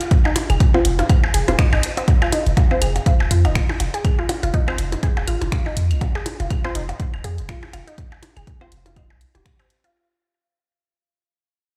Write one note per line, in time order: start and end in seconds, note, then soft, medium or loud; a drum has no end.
0.01 closed hi-hat soft
0.11 kick loud
0.11 closed hi-hat soft
0.25 0.32 D#4 medium
0.25 percussion blips soft
0.25 percussion blips medium
0.36 closed hi-hat medium
0.36 ride medium
0.36 percussion blips medium
0.50 0.56 F1 loud
0.50 0.57 G#4 medium
0.50 closed hi-hat soft
0.50 claves medium
0.60 kick loud
0.60 closed hi-hat medium
0.74 0.84 C4 medium
0.74 0.81 F4 medium
0.74 0.84 F4 medium
0.74 0.84 C5 loud
0.74 percussion blips medium
0.74 percussion blips soft
0.85 1.02 F1 loud
0.85 closed hi-hat loud
0.85 ride medium
0.99 1.02 F4 medium
0.99 closed hi-hat soft
0.99 percussion blips medium
1.09 kick loud
1.09 closed hi-hat soft
1.09 percussion blips soft
1.09 claves medium
1.24 percussion blips medium
1.34 1.43 F1 loud
1.34 1.40 G#4 medium
1.34 closed hi-hat loud
1.34 ride medium
1.48 1.55 D#1 medium
1.48 1.54 C4 medium
1.48 1.53 F4 medium
1.48 1.54 F4 medium
1.48 1.54 C5 loud
1.48 closed hi-hat soft
1.48 percussion blips medium
1.59 1.65 D#4 medium
1.59 finger snap loud
1.59 kick loud
1.59 closed hi-hat soft
1.59 percussion blips medium
1.73 1.79 G#1 loud
1.73 1.77 D#4 medium
1.73 claves medium
1.73 percussion blips medium
1.83 closed hi-hat loud
1.83 ride medium
1.97 2.04 C4 medium
1.97 closed hi-hat soft
1.97 percussion blips soft
2.08 kick loud
2.08 closed hi-hat medium
2.08 percussion blips soft
2.22 2.25 F4 medium
2.22 claves medium
2.22 percussion blips medium
2.32 2.41 D#4 medium
2.32 closed hi-hat medium
2.32 ride medium
2.32 percussion blips medium
2.46 2.53 F1 loud
2.46 closed hi-hat soft
2.57 kick loud
2.57 closed hi-hat medium
2.57 percussion blips medium
2.71 2.80 C4 medium
2.71 2.80 F4 medium
2.71 2.80 C5 loud
2.71 percussion blips soft
2.82 2.98 F1 loud
2.82 2.91 G#4 medium
2.82 closed hi-hat medium
2.82 ride medium
2.82 claves medium
2.96 closed hi-hat soft
2.96 percussion blips soft
3.06 3.15 F4 medium
3.06 kick loud
3.06 closed hi-hat medium
3.20 3.27 D#1 medium
3.20 percussion blips medium
3.31 3.46 F2 medium
3.31 3.34 F4 medium
3.31 closed hi-hat loud
3.31 ride medium
3.45 3.59 D#1 medium
3.45 3.52 D#4 medium
3.45 closed hi-hat soft
3.45 percussion blips medium
3.45 claves medium
3.55 finger snap loud
3.55 kick loud
3.55 closed hi-hat medium
3.69 percussion blips medium
3.80 3.89 F1 loud
3.80 closed hi-hat loud
3.80 ride medium
3.80 percussion blips soft
3.94 4.01 G#4 medium
3.94 closed hi-hat soft
4.05 kick loud
4.05 closed hi-hat medium
4.05 claves medium
4.19 4.25 F4 medium
4.19 percussion blips soft
4.29 closed hi-hat medium
4.29 ride medium
4.29 percussion blips medium
4.43 4.50 F1 loud
4.43 4.46 F4 medium
4.43 closed hi-hat soft
4.54 4.63 D#4 medium
4.54 kick loud
4.54 closed hi-hat medium
4.68 4.77 C4 medium
4.68 4.77 F4 medium
4.68 4.77 C5 loud
4.68 percussion blips soft
4.68 claves medium
4.68 percussion blips medium
4.78 4.95 F1 loud
4.78 closed hi-hat medium
4.78 ride medium
4.92 closed hi-hat soft
4.92 percussion blips medium
5.03 5.12 G#4 medium
5.03 kick loud
5.03 closed hi-hat medium
5.17 5.24 D#1 loud
5.17 percussion blips medium
5.27 5.36 G#1 medium
5.27 5.37 F4 medium
5.27 closed hi-hat medium
5.27 ride medium
5.27 claves medium
5.41 5.48 F1 loud
5.41 closed hi-hat soft
5.41 percussion blips medium
5.52 5.56 F4 medium
5.52 finger snap loud
5.52 kick loud
5.52 closed hi-hat medium
5.52 percussion blips soft
5.66 5.73 D#4 medium
5.66 percussion blips soft
5.77 5.92 F2 medium
5.77 closed hi-hat medium
5.77 ride medium
5.91 5.97 C2 loud
5.91 closed hi-hat soft
5.91 claves medium
6.01 kick loud
6.01 closed hi-hat medium
6.01 percussion blips medium
6.15 6.22 G#4 medium
6.15 percussion blips medium
6.26 closed hi-hat medium
6.26 ride medium
6.26 percussion blips medium
6.40 6.47 F1 loud
6.40 6.47 F4 medium
6.40 closed hi-hat soft
6.40 percussion blips soft
6.50 kick loud
6.50 closed hi-hat medium
6.50 claves medium
6.64 6.74 C4 medium
6.64 6.67 F4 medium
6.64 6.74 F4 medium
6.64 6.74 C5 loud
6.64 percussion blips medium
6.75 6.92 F1 loud
6.75 6.84 D#4 medium
6.75 closed hi-hat medium
6.75 ride medium
6.89 closed hi-hat soft
6.89 percussion blips medium
7.00 kick loud
7.00 closed hi-hat medium
7.14 7.20 D#1 medium
7.14 claves medium
7.14 percussion blips soft
7.24 7.40 F2 medium
7.24 7.33 G#4 medium
7.24 closed hi-hat medium
7.24 ride medium
7.24 percussion blips soft
7.38 7.52 D#1 medium
7.38 closed hi-hat soft
7.49 7.58 F4 medium
7.49 finger snap loud
7.49 kick loud
7.49 closed hi-hat medium
7.63 percussion blips medium
7.73 7.82 F1 medium
7.73 7.77 F4 medium
7.73 closed hi-hat medium
7.73 ride medium
7.73 percussion blips medium
7.73 claves medium
7.87 7.94 D#4 medium
7.87 closed hi-hat soft
7.98 kick loud
7.98 closed hi-hat medium
8.12 percussion blips soft
8.12 percussion blips medium
8.22 closed hi-hat medium
8.22 ride medium
8.22 percussion blips medium
8.37 8.43 F1 loud
8.37 8.43 G#4 medium
8.37 closed hi-hat soft
8.37 claves medium
8.47 kick loud
8.47 closed hi-hat medium
8.61 8.71 C4 medium
8.61 8.71 F4 medium
8.61 8.68 F4 medium
8.61 8.71 C5 loud
8.61 percussion blips medium
8.61 percussion blips soft
8.72 9.12 F1 loud
8.72 closed hi-hat medium
8.72 ride medium
8.86 8.89 F4 medium
8.86 closed hi-hat soft
8.86 percussion blips medium
8.96 9.05 D#4 medium
8.96 kick loud
8.96 closed hi-hat medium
8.96 percussion blips soft
8.96 claves medium
9.10 9.24 C2 loud
9.10 percussion blips medium
9.21 closed hi-hat medium
9.21 ride medium
9.35 9.42 D#1 loud
9.35 9.38 G4 medium
9.35 closed hi-hat soft
9.35 percussion blips loud
9.46 finger snap loud
9.46 kick loud
9.46 closed hi-hat medium
9.46 percussion blips medium
9.59 9.62 C4 medium
9.59 closed hi-hat soft
9.59 claves medium
9.59 percussion blips medium
9.70 closed hi-hat medium
9.70 ride medium
9.84 9.87 F4 medium
9.84 closed hi-hat soft
9.84 percussion blips soft